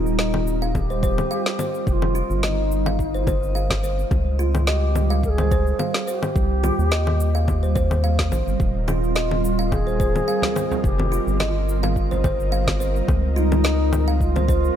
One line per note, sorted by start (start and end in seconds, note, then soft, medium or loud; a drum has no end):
0.00 1.24 D#1 loud
0.00 4.10 G3 medium
0.00 6.35 C4 medium
0.00 0.71 D#4 medium
0.00 6.35 F4 medium
0.00 6.35 A#4 medium
0.00 6.36 D#5 medium
0.06 shaker soft
0.19 0.33 D#5 medium
0.19 snare medium
0.19 shaker soft
0.34 low conga medium
0.47 shaker medium
0.62 0.74 F5 medium
0.62 shaker soft
0.75 0.80 G#4 loud
0.75 kick medium
0.75 low conga medium
0.75 shaker soft
0.79 1.87 G4 loud
0.90 1.02 C5 medium
0.90 shaker soft
1.03 1.12 C5 loud
1.03 kick medium
1.03 shaker medium
1.18 low conga medium
1.18 shaker soft
1.31 1.40 F5 loud
1.31 shaker soft
1.46 snare medium
1.59 1.68 C5 medium
1.59 low conga medium
1.59 shaker medium
1.75 shaker soft
1.87 2.22 F1 loud
1.87 1.93 G4 medium
1.87 kick loud
1.87 shaker soft
1.92 2.43 F4 loud
2.02 low conga medium
2.15 2.24 F4 medium
2.15 shaker medium
2.30 4.05 G1 loud
2.30 shaker soft
2.43 2.49 F4 medium
2.43 2.57 D#5 medium
2.43 snare medium
2.43 low conga medium
2.43 shaker soft
2.48 3.27 D#4 medium
2.72 shaker medium
2.86 2.98 F5 loud
2.86 low conga medium
2.86 shaker soft
2.99 kick medium
2.99 shaker soft
3.14 3.26 C5 medium
3.14 shaker soft
3.27 3.36 C5 loud
3.27 kick loud
3.27 low conga medium
3.27 shaker medium
3.43 shaker soft
3.55 3.64 F5 loud
3.55 shaker soft
3.70 kick medium
3.70 snare medium
3.70 low conga medium
3.83 3.92 C5 medium
3.83 shaker medium
3.99 shaker soft
4.11 5.73 C#2 loud
4.11 14.76 G3 medium
4.11 kick loud
4.11 low conga medium
4.11 shaker soft
4.39 4.65 F4 medium
4.39 4.48 F4 loud
4.39 shaker medium
4.55 low conga medium
4.55 shaker soft
4.67 5.19 G4 medium
4.67 4.82 D#5 medium
4.67 snare medium
4.67 shaker soft
4.95 low conga medium
4.95 shaker medium
5.10 5.23 F5 loud
5.10 shaker soft
5.23 5.29 A#4 loud
5.23 kick medium
5.23 shaker soft
5.28 5.76 G#4 loud
5.38 5.50 C5 medium
5.38 low conga medium
5.38 shaker soft
5.51 5.60 C5 loud
5.51 kick loud
5.51 shaker medium
5.67 shaker soft
5.79 5.88 F5 medium
5.79 low conga medium
5.79 shaker soft
5.94 snare medium
6.08 7.72 G4 loud
6.08 6.16 C5 medium
6.08 shaker medium
6.23 low conga medium
6.23 shaker soft
6.36 6.71 C2 medium
6.36 kick loud
6.36 shaker soft
6.63 6.72 F4 medium
6.63 low conga medium
6.63 shaker medium
6.69 14.76 C4 medium
6.79 8.31 D#2 loud
6.79 14.76 F4 medium
6.79 shaker soft
6.91 7.06 D#5 loud
6.91 snare medium
6.91 shaker soft
7.07 low conga medium
7.20 shaker medium
7.28 14.76 D#5 medium
7.35 14.76 A#4 medium
7.35 7.47 F5 medium
7.35 shaker soft
7.48 kick medium
7.48 low conga medium
7.48 shaker soft
7.63 7.74 C5 medium
7.63 shaker soft
7.76 7.84 C5 loud
7.76 kick loud
7.76 shaker medium
7.91 low conga medium
7.91 shaker soft
8.04 8.12 F5 loud
8.04 shaker soft
8.19 kick medium
8.19 snare medium
8.32 8.42 A#1 medium
8.32 8.40 C5 medium
8.32 low conga medium
8.32 shaker medium
8.47 8.56 G1 medium
8.47 shaker soft
8.60 10.21 D#1 loud
8.60 kick loud
8.60 shaker soft
8.88 8.96 F4 medium
8.88 9.73 F4 loud
8.88 low conga medium
8.88 shaker medium
9.04 shaker soft
9.16 9.30 D#5 loud
9.16 snare medium
9.16 shaker soft
9.31 low conga medium
9.45 shaker medium
9.59 9.71 F5 loud
9.59 shaker soft
9.72 10.83 G#4 loud
9.72 kick medium
9.72 low conga medium
9.72 shaker soft
9.87 9.99 C5 medium
9.87 shaker soft
10.00 10.09 C5 loud
10.00 kick medium
10.00 shaker medium
10.15 low conga medium
10.15 shaker soft
10.28 10.37 F5 loud
10.28 shaker soft
10.42 snare medium
10.42 frame drum medium
10.56 10.65 C5 medium
10.56 low conga medium
10.56 shaker medium
10.71 frame drum medium
10.71 shaker soft
10.84 11.20 F1 loud
10.84 11.34 G4 loud
10.84 kick loud
10.84 shaker soft
10.98 frame drum medium
10.98 low conga medium
11.12 11.21 F4 medium
11.12 shaker medium
11.27 13.02 G1 loud
11.27 shaker soft
11.34 11.42 G4 medium
11.40 12.25 F4 medium
11.40 11.54 D#5 loud
11.40 snare medium
11.40 low conga medium
11.40 shaker soft
11.69 shaker medium
11.83 11.96 F5 loud
11.83 low conga medium
11.83 shaker soft
11.96 kick medium
11.96 shaker soft
12.11 12.23 C5 medium
12.11 frame drum medium
12.11 shaker soft
12.24 12.33 C5 loud
12.24 kick medium
12.24 low conga medium
12.24 shaker medium
12.40 shaker soft
12.52 12.61 F5 loud
12.52 shaker soft
12.67 kick medium
12.67 snare medium
12.67 low conga medium
12.80 12.89 C5 medium
12.80 shaker medium
12.96 shaker soft
13.08 14.70 C#2 loud
13.08 kick loud
13.08 low conga medium
13.08 shaker soft
13.36 14.17 D#4 loud
13.36 13.45 F4 medium
13.36 shaker medium
13.52 low conga medium
13.52 shaker soft
13.64 13.79 D#5 loud
13.64 snare medium
13.64 shaker soft
13.93 low conga medium
13.93 shaker medium
14.08 14.20 F5 loud
14.08 shaker soft
14.21 14.76 F4 loud
14.21 kick medium
14.21 shaker soft
14.36 14.47 C5 medium
14.36 low conga medium
14.36 shaker soft
14.48 14.57 C5 loud
14.48 kick loud
14.48 shaker medium
14.65 shaker soft